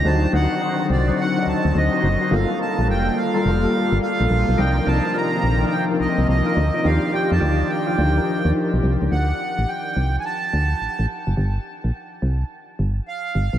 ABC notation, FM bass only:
X:1
M:4/4
L:1/16
Q:"Swing 16ths" 1/4=106
K:Gm
V:1 name="FM bass" clef=bass
D,,2 D,, z3 C,,2 z2 D,, D,, D,, z ^F,,, z | G,,, z2 B,,, F,,,2 z2 F,,,2 z G,,, z B,,, B,,, =B,,, | C,,2 C,, z3 B,,,2 z2 C,, C,, C,, z D,, z | E,, z2 F,, D,,2 z2 D,,2 z E,, z =B,,, C,, ^C,, |
D,,2 z A,,, z2 C,,2 z2 D,,2 A,,, A,,, z ^F,,, | G,,,2 z B,,, z2 C,,2 z2 G,,,2 z2 G,,, =B,,, |]